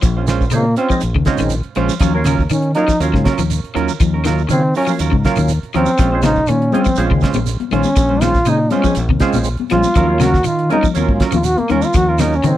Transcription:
0.02 A#1 F3, kick, closed hi-hat, shekere
0.17 C#4 F4 C5
0.27 G#3 C#4 F4 C5, snare, closed hi-hat, shekere
0.41 kick, shekere
0.50 A#2 C#3 G#3 A#3 C4 C#4, closed hi-hat, shekere
0.55 F4
0.76 C4 C#4 F4 C5, muted clean electric guitar stroke, closed hi-hat, shekere
0.90 F3 G#3 C4 C#4 D#4, kick, shekere
1.00 A#1, closed hi-hat, shekere
1.15 D#2 C#3, kick
1.25 G#3 C4 C#4 D#4 F4 C5, kick, snare, closed hi-hat, shekere
1.38 A#1 D#3, snare, closed hi-hat, shekere
1.50 closed hi-hat, shekere
1.63 muted fingered electric bass stroke, closed hi-hat
1.75 A#1 F3 G#3 C#4 F4 C5, closed hi-hat, shekere
1.89 snare, shekere
2.00 D#2 F3 F#3 C#4 F4, muted clean electric guitar stroke, kick, closed hi-hat, shekere
2.15 F#3 A#3 C#4 F4 A#4
2.24 C#3 F#3 C#4 F4 A#4, snare, closed hi-hat, shekere
2.39 kick, shekere
2.50 D#3 C#4, closed hi-hat, shekere
2.62 closed hi-hat
2.75 F#3 A#3 C#4 D#4 F4 A#4, closed hi-hat, shekere
2.88 F3, kick, snare, closed hi-hat, shekere
3.00 D#2 F#3 A#3 C#4 F4 A#4, closed hi-hat, shekere
3.14 G#2 C#3, kick, snare
3.24 F#3 C#4 F4 A#4, kick, snare, closed hi-hat, shekere
3.38 D#2 F3, shekere
3.50 closed hi-hat, shekere
3.64 muted fingered electric bass stroke, closed hi-hat
3.75 D#2 D#3 F#3 C#4 F4 A#4, closed hi-hat, shekere
3.89 shekere
4.00 D#2 F3, kick, closed hi-hat, shekere
4.14 C#4 A#4
4.24 D#3 F#3 F4 A#4, snare, closed hi-hat, shekere
4.38 shekere
4.49 C#3 D#3 F#3 A#3 C4 C#4 F4, closed hi-hat, shekere
4.75 F#3 C#4 F4 A#4, open hi-hat, shekere
4.87 F3 F#3 A#3 C#4 F4, shekere
4.99 D#2 F#3 C#4 F4 A#4, closed hi-hat, shekere
5.11 G#2 C#3, kick
5.24 F#3 A#3 C#4 F4 A#4, kick, snare, closed hi-hat, shekere
5.36 D#2 D#3, closed hi-hat, shekere
5.48 closed hi-hat, shekere
5.63 muted fingered electric bass stroke, closed hi-hat
5.73 D#2 F3 F#3 C4 C#4 F4 A#4, closed hi-hat, shekere
5.86 shekere
5.98 A#1 F3 G#3 C#4 F4 C5, kick, closed hi-hat, shekere
6.12 G#3 C4 C#4 F4 C5
6.22 C#3 G#3 C#4 D#4 F4 C5, snare, closed hi-hat, high conga, shekere
6.36 kick, shekere
6.47 A#2 D#3 C#4, closed hi-hat, shekere
6.62 closed hi-hat
6.72 G#3 C4 C#4 F4 G#4 C5, closed hi-hat, high conga, low conga, shekere
6.85 F3, kick, closed hi-hat, shekere
6.96 A#1 G#3 C4 C#4 F4 C5, closed hi-hat, shekere
7.00 F4
7.11 D#2 C#3, kick
7.21 G#3 C#4 F4 C5, kick, snare, closed hi-hat, shekere
7.34 A#1 F3, high conga, shekere
7.46 closed hi-hat, shekere
7.60 muted fingered electric bass stroke, closed hi-hat, high conga
7.71 A#1 D#3 G#3 C#4 F4 C5, closed hi-hat, low conga, shekere
7.83 high conga, shekere
7.96 A#1 F3, kick, closed hi-hat, shekere
8.09 C#4 F4 C5, low conga
8.21 D#3 G#3 C#4 F4 C5, snare, closed hi-hat, high conga, shekere
8.34 kick, snare, shekere
8.45 A#2 C#3 G#3 C4 C#4 D#4 G#4, closed hi-hat, shekere
8.71 G#3 C#4 F4 C5, closed hi-hat, high conga, low conga, shekere
8.84 F3 G#3 C4 C#4 G#4, kick, shekere
8.95 A#1, closed hi-hat, shekere
9.09 D#2 C3, kick
9.20 G#3 C4 C#4 F4 C5, kick, snare, closed hi-hat, shekere
9.33 A#1, closed hi-hat, high conga, shekere
9.44 closed hi-hat, shekere
9.57 muted fingered electric bass stroke, closed hi-hat, high conga
9.69 A#1 F3 G#3 C#4 F4 C5, snare, closed hi-hat, low conga, shekere
9.83 high conga, shekere
9.95 D#2 F3 F#3 C#4 F4 A#4, kick, closed hi-hat, shekere
10.08 F#3 A#3 C#4 F4 A#4
10.20 C#3 F#3 C#4 F4 F#4 A#4, snare, closed hi-hat, high conga, shekere
10.34 kick, snare, shekere
10.44 D#3 F4, closed hi-hat, shekere
10.59 closed hi-hat
10.70 F#3 A#3 C#4 D#4 F4 G#4 A#4, muted clean electric guitar stroke, closed hi-hat, high conga, low conga, shekere
10.83 F3, kick, closed hi-hat, shekere
10.94 D#2 F#3 A#3 C#4 F4 A#4, closed hi-hat, high conga, shekere
11.09 G#2, kick
11.20 F#3 C#4 F4 A#4, kick, snare, closed hi-hat, shekere
11.32 D#2 F3 F4, high conga, shekere
11.44 F#4, closed hi-hat, shekere
11.58 A#3, muted fingered electric bass stroke, closed hi-hat, high conga
11.69 D#2 D#3 C#4 F4 A#4, closed hi-hat, high conga, low conga, shekere
11.82 F4, high conga, shekere
11.93 D#2 F3 F#4, kick, closed hi-hat, shekere
12.09 C#4 F4 A#4
12.18 D#3 F#3 C#4 D#4 F4 A#4, snare, closed hi-hat, high conga, shekere
12.32 C#4, shekere
12.43 C#3 D#3 F#3 A#3 C4 C#4 D#4, closed hi-hat, shekere

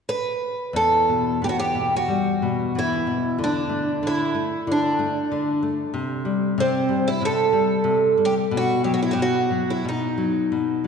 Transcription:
0.09 B4
0.73 E2 A4
1.09 B2
1.42 B3 G4
1.49 F#4
1.59 G4
1.75 B2
1.96 F#4
2.08 G3
2.42 B2
2.75 E3 E4
3.07 B2
3.38 D3
3.44 D4
3.69 A3
4.03 D3
4.07 E4
4.35 A3
4.67 D3
4.72 D4
4.99 A3
5.32 D3
5.63 A3
5.94 C3
6.25 G3
6.58 C3 C4
6.89 G3
7.08 E4
7.22 C3 A4
7.53 G3
7.84 C3
8.18 G3
8.25 G4
8.51 B2
8.57 F#4
8.84 F#3 G4
8.94 F#4
9.03 E4
9.11 F#4 G4
9.19 B2 F#4
9.51 F#3
9.70 E4
9.85 B2 D#4
10.18 F#3
10.52 B2
10.84 F#3

